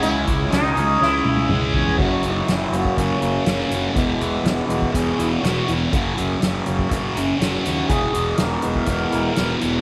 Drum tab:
CC |----------------|x---------------|----------------|----------------|
HH |x-x-x-x---------|--x-x-x-x-x-x-x-|x-x-x-x-x-x-x-x-|x-x-x-x-x-x-x-x-|
SD |----o---o-------|----o-------oo--|----o-------o---|----o-------oo--|
T1 |----------oo----|----------------|----------------|----------------|
T2 |------------o---|----------------|----------------|----------------|
FT |--------------oo|----------------|----------------|----------------|
BD |--o-------------|o------oo-------|o------oo-------|o------oo-------|

CC |----------------|
HH |x-x-x-x-x-x-x-x-|
SD |----o-------o---|
T1 |----------------|
T2 |----------------|
FT |----------------|
BD |o------oo-------|